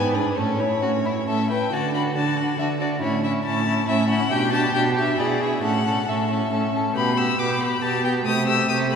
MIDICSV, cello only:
0, 0, Header, 1, 2, 480
1, 0, Start_track
1, 0, Tempo, 449438
1, 405, Time_signature, 3, 2, 24, 8
1, 1846, Tempo, 431034
1, 5206, Tempo, 437637
1, 9823, End_track
2, 0, Start_track
2, 0, Title_t, "Cello"
2, 0, Program_c, 0, 42
2, 0, Note_on_c, 0, 44, 52
2, 345, Note_off_c, 0, 44, 0
2, 404, Note_on_c, 0, 45, 46
2, 831, Note_off_c, 0, 45, 0
2, 876, Note_on_c, 0, 45, 45
2, 1307, Note_off_c, 0, 45, 0
2, 1362, Note_on_c, 0, 45, 42
2, 1787, Note_off_c, 0, 45, 0
2, 1840, Note_on_c, 0, 50, 43
2, 2271, Note_off_c, 0, 50, 0
2, 2327, Note_on_c, 0, 50, 41
2, 2753, Note_off_c, 0, 50, 0
2, 2809, Note_on_c, 0, 50, 45
2, 3233, Note_off_c, 0, 50, 0
2, 3291, Note_on_c, 0, 45, 45
2, 3713, Note_off_c, 0, 45, 0
2, 3768, Note_on_c, 0, 45, 54
2, 4188, Note_off_c, 0, 45, 0
2, 4246, Note_on_c, 0, 45, 59
2, 4667, Note_off_c, 0, 45, 0
2, 4725, Note_on_c, 0, 47, 55
2, 5151, Note_off_c, 0, 47, 0
2, 5204, Note_on_c, 0, 47, 59
2, 5630, Note_off_c, 0, 47, 0
2, 5693, Note_on_c, 0, 47, 50
2, 6119, Note_off_c, 0, 47, 0
2, 6171, Note_on_c, 0, 45, 46
2, 6603, Note_off_c, 0, 45, 0
2, 6660, Note_on_c, 0, 45, 47
2, 7090, Note_off_c, 0, 45, 0
2, 7145, Note_on_c, 0, 45, 42
2, 7573, Note_off_c, 0, 45, 0
2, 7622, Note_on_c, 0, 47, 49
2, 8049, Note_off_c, 0, 47, 0
2, 8102, Note_on_c, 0, 47, 49
2, 8528, Note_off_c, 0, 47, 0
2, 8580, Note_on_c, 0, 47, 49
2, 9001, Note_off_c, 0, 47, 0
2, 9061, Note_on_c, 0, 48, 56
2, 9477, Note_off_c, 0, 48, 0
2, 9526, Note_on_c, 0, 48, 58
2, 9823, Note_off_c, 0, 48, 0
2, 9823, End_track
0, 0, End_of_file